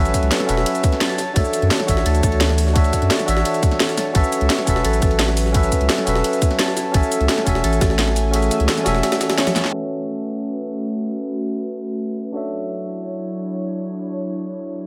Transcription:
Already playing: sub bass A1, analog synth pad F#3 B4 C#5, tine electric piano C#4 F#4 A4 B4, harp A4 C#5 E5
0.00 tine electric piano E5
0.05 ride, cabasa
0.14 harp E5, kick, closed hi-hat, ride, cabasa
0.23 sub bass C#2, closed hi-hat
0.31 harp A4, snare, closed hi-hat, ride
0.40 snare
0.46 sub bass E1, tine electric piano C#4 F#4 A4 B4, harp E5, open hi-hat, ride, cabasa
0.51 tine electric piano E5
0.57 snare
0.66 closed hi-hat, ride
0.75 closed hi-hat, cabasa
0.83 kick, closed hi-hat, ride, cabasa
0.92 snare, ride
1.01 harp A5, snare, closed hi-hat, ride
1.10 snare
1.18 analog synth pad E3 F#4, harp E4, snare, open hi-hat, ride, cabasa
1.33 sub bass D2, tine electric piano D4 F#4 A4 C#5, harp A4, kick, closed hi-hat, ride
1.38 tine electric piano E5
1.45 cabasa
1.53 harp E5, closed hi-hat, ride, cabasa
1.62 sub bass F#2, closed hi-hat
1.71 harp A4, snare, closed hi-hat, ride
1.80 snare
1.86 sub bass A1, tine electric piano D4 F#4 A4 C#5, harp A4, kick, open hi-hat, ride, cabasa
1.90 tine electric piano E5
1.97 snare
2.06 sub bass D2, harp A4, closed hi-hat, ride
2.15 closed hi-hat, cabasa
2.23 sub bass D2, harp A4, kick, closed hi-hat, ride, cabasa
2.32 ride
2.41 snare, closed hi-hat, ride
2.49 snare
2.58 open hi-hat, ride, cabasa
2.67 snare
2.73 tine electric piano D4 F#4 A4 C#5, kick, closed hi-hat, ride
2.78 tine electric piano E5
2.84 ride, cabasa
2.93 harp E5, kick, closed hi-hat, ride, cabasa
3.02 sub bass F#2, closed hi-hat
3.10 harp A4, snare, closed hi-hat, ride
3.19 snare, cabasa
3.26 sub bass A1, tine electric piano D4 F#4 A4 C#5, harp E5, open hi-hat, ride, cabasa
3.30 tine electric piano E5
3.37 snare
3.45 closed hi-hat, ride
3.54 closed hi-hat, cabasa
3.63 kick, closed hi-hat, ride, cabasa
3.71 snare, ride
3.80 harp A4, snare, closed hi-hat, ride
3.89 snare, cabasa
3.98 harp A5, snare, open hi-hat, ride, cabasa
4.13 sub bass A1, analog synth pad F#3 B4, tine electric piano C#4 F#4 A4 B4, harp A4, kick, closed hi-hat, ride
4.17 tine electric piano E5
4.24 cabasa
4.32 harp E5, closed hi-hat, ride, cabasa
4.41 sub bass C#2, closed hi-hat
4.50 harp A4, snare, closed hi-hat, ride
4.58 snare
4.65 sub bass E1, tine electric piano C#4 F#4 A4 B4, harp A4, kick, open hi-hat, ride, cabasa
4.70 tine electric piano E5
4.76 snare
4.85 sub bass A1, harp A4, closed hi-hat, ride
4.93 closed hi-hat, cabasa
5.02 sub bass A1, harp A4, kick, closed hi-hat, ride, cabasa
5.11 ride
5.19 snare, closed hi-hat, ride
5.28 snare
5.37 open hi-hat, ride, cabasa
5.46 snare
5.52 tine electric piano C#4 F#4 A4 B4, kick, closed hi-hat, ride
5.57 tine electric piano E5
5.63 ride, cabasa
5.72 harp E5, kick, closed hi-hat, ride, cabasa
5.81 sub bass C#2, closed hi-hat
5.89 harp A4, snare, closed hi-hat, ride
5.98 snare
6.05 sub bass E1, tine electric piano C#4 F#4 A4 B4, harp E5, open hi-hat, ride, cabasa
6.09 tine electric piano E5
6.16 snare
6.24 closed hi-hat, ride
6.33 closed hi-hat, cabasa
6.42 kick, closed hi-hat, ride, cabasa
6.51 snare, ride
6.59 harp A5, snare, closed hi-hat, ride
6.68 snare
6.77 harp E4, snare, open hi-hat, ride, cabasa
6.92 sub bass A1, analog synth pad E3 A3 G#5, tine electric piano C#4 F#4 A4 G#5, harp A4, kick, closed hi-hat, ride
6.97 tine electric piano E5
7.03 cabasa
7.11 harp E5, closed hi-hat, ride, cabasa
7.20 sub bass C#2, closed hi-hat
7.29 harp A4, snare, closed hi-hat, ride
7.38 snare
7.44 sub bass E1, tine electric piano C#4 F#4 A4 G#5, harp A4, kick, open hi-hat, ride, cabasa
7.49 tine electric piano E5
7.55 snare
7.64 sub bass A1, harp A4, closed hi-hat, ride
7.73 closed hi-hat, cabasa
7.81 sub bass A1, harp A4, kick, snare, closed hi-hat, ride, cabasa
7.90 snare
7.99 snare, closed hi-hat, ride
8.07 snare
8.16 open hi-hat, ride, cabasa
8.31 tine electric piano C#4 F#4 G#4 A4, closed hi-hat, ride
8.36 tine electric piano E5
8.42 ride, cabasa
8.51 harp E5, closed hi-hat, ride, cabasa
8.60 sub bass C#2, closed hi-hat
8.68 harp A4, snare, closed hi-hat, ride
8.77 snare, cabasa
8.84 sub bass E1, tine electric piano C#4 F#4 A4 G#5, harp E5, snare, open hi-hat, ride, cabasa
8.88 tine electric piano E5
8.95 snare
9.03 snare, closed hi-hat, ride
9.12 snare, closed hi-hat, ride, cabasa
9.21 snare, closed hi-hat, ride, cabasa
9.30 snare, closed hi-hat, ride
9.38 harp C#5, snare, closed hi-hat, ride
9.47 snare, high tom, ride, cabasa
9.56 harp A5, snare, open hi-hat, ride, cabasa
9.64 snare
9.70 analog synth pad A3 C#4 F#4 B4, tine electric piano C#4 F#4 A4 B4
9.75 tine electric piano E5
12.32 analog synth pad F#3 D4 E4 C#5, tine electric piano D4 F#4 A4 C#5
12.37 tine electric piano E5

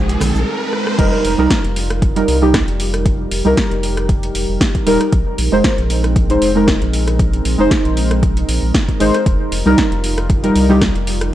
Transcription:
Already playing: analog synth bass A#1, synth stab G#3 D#4 C5, ambient pad G#3 C4 D#4 A#4, riser
0.09 closed hi-hat, shaker
0.21 analog synth bass A#1, cross-stick, open hi-hat, low conga, shaker
0.35 analog synth bass A#1, high conga, shaker
0.73 cross-stick
0.87 cross-stick
0.98 analog synth bass F1, synth stab G3 D#4 A#4, ambient pad G3 D#4 F4 A#4, kick, closed hi-hat, crash
1.24 analog synth bass F1, open hi-hat
1.38 analog synth bass C2, synth stab G3 D#4 A#4
1.50 kick, snare, closed hi-hat
1.64 analog synth bass F1, closed hi-hat
1.76 open hi-hat
1.90 cross-stick, closed hi-hat
2.02 kick, closed hi-hat
2.16 synth stab G3 D#4 A#4, closed hi-hat
2.28 analog synth bass C2, open hi-hat
2.41 synth stab G3 D#4 G4
2.54 kick, cross-stick, snare, closed hi-hat
2.68 analog synth bass F1, closed hi-hat
2.80 open hi-hat
2.94 cross-stick, closed hi-hat
3.06 ambient pad G4, kick, closed hi-hat
3.31 analog synth bass F1, open hi-hat
3.44 analog synth bass C2, synth stab G3 D#4 A#4
3.57 kick, snare, closed hi-hat
3.71 analog synth bass F1, closed hi-hat
3.83 open hi-hat
3.97 cross-stick, closed hi-hat
4.09 kick, closed hi-hat
4.23 closed hi-hat
4.35 analog synth bass F1, open hi-hat
4.49 analog synth bass F1
4.61 kick, snare, closed hi-hat
4.75 kick, closed hi-hat
4.86 analog synth bass D#1, synth stab G3 D#4 A#4, open hi-hat
5.01 cross-stick, closed hi-hat
5.12 analog synth bass A#1, ambient pad G#3 C4, kick, closed hi-hat
5.38 analog synth bass A#1, open hi-hat
5.52 analog synth bass F1, synth stab G#3 D#4 C5
5.64 kick, snare, closed hi-hat
5.78 analog synth bass A#1, closed hi-hat
5.90 open hi-hat
6.04 cross-stick, closed hi-hat
6.16 kick, closed hi-hat
6.29 synth stab G#3 D#4 C5, closed hi-hat
6.42 analog synth bass F1, open hi-hat
6.55 synth stab G#3 D#4 A#4
6.68 kick, cross-stick, snare, closed hi-hat
6.82 analog synth bass A#1, closed hi-hat
6.93 open hi-hat
7.08 cross-stick, closed hi-hat
7.19 kick, closed hi-hat
7.33 closed hi-hat
7.45 analog synth bass A#1, open hi-hat
7.58 analog synth bass F1, synth stab G#3 D#4 C5
7.71 kick, snare, closed hi-hat
7.85 analog synth bass A#1, closed hi-hat
7.97 open hi-hat
8.11 cross-stick, closed hi-hat
8.23 kick, closed hi-hat
8.37 closed hi-hat
8.49 analog synth bass A#1, open hi-hat
8.63 analog synth bass A#1
8.74 kick, snare, closed hi-hat
8.89 kick, closed hi-hat
9.00 analog synth bass G#1, synth stab G#3 D#4 C5, open hi-hat
9.14 cross-stick, closed hi-hat
9.26 analog synth bass F1, ambient pad G3 F4, kick, closed hi-hat
9.52 analog synth bass F1, open hi-hat
9.66 analog synth bass C2, synth stab G3 D#4 A#4
9.78 kick, snare, closed hi-hat
9.92 analog synth bass F1, closed hi-hat
10.04 open hi-hat
10.18 cross-stick, closed hi-hat
10.30 kick, closed hi-hat
10.43 synth stab G3 D#4 A#4, closed hi-hat
10.55 analog synth bass C2, open hi-hat
10.69 synth stab G3 D#4 G4
10.81 kick, cross-stick, snare, closed hi-hat
10.95 analog synth bass F1, closed hi-hat
11.07 open hi-hat
11.21 cross-stick, closed hi-hat

